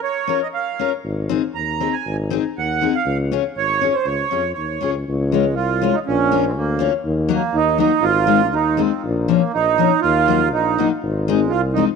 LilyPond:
<<
  \new Staff \with { instrumentName = "Accordion" } { \time 2/4 \key des \major \tempo 4 = 120 des''8. ees''16 f''8. r16 | r4 bes''8. aes''16~ | aes''16 r8. ges''8. f''16~ | f''16 r8. des''8. c''16 |
des''4 des''8. r16 | r8 aes8 f'8. ees'16 | des'8. c'16 bes8. r16 | r8 bes8 ees'8 ees'8 |
f'4 ees'8 c'8 | r8 bes8 ees'4 | f'4 ees'8. r16 | r8 aes8 f'8 ees'8 | }
  \new Staff \with { instrumentName = "Steel-string acoustic guitar" } { \time 2/4 \key des \major r8 <des' f' bes'>8 r8 <des' f' bes'>8 | r8 <c' ees' aes'>8 r8 <c' ees' aes'>8 | r8 <c' ees' aes'>8 r8 <c' ees' aes'>8 | r8 <des' f' aes'>8 r8 <des' f' aes'>8 |
r8 <des' f' aes'>8 r8 <des' f' aes'>8 | r8 <aes des' f'>8 r8 <aes des' f'>8 | r8 <bes des' f'>8 r8 <bes des' f'>8 | r8 <ges bes ees'>8 r8 <ges bes ees'>8 |
r8 <aes c' ees'>8 r8 <aes c' ees'>8 | r8 <f bes des'>8 r8 <f bes des'>8 | r8 <ges bes ees'>8 r8 <ges bes ees'>8 | r8 <aes c' ees'>8 r8 <aes c' ees'>8 | }
  \new Staff \with { instrumentName = "Tuba" } { \clef bass \time 2/4 \key des \major r2 | aes,,4 ees,4 | aes,,4 ees,4 | des,4 aes,,4 |
des,8 f,8 ees,8 des,8 | des,4 c,4 | bes,,4 d,4 | ees,4 ees,4 |
aes,,4 ees,4 | bes,,4 bes,,4 | ees,4 bes,,4 | aes,,4 c,4 | }
>>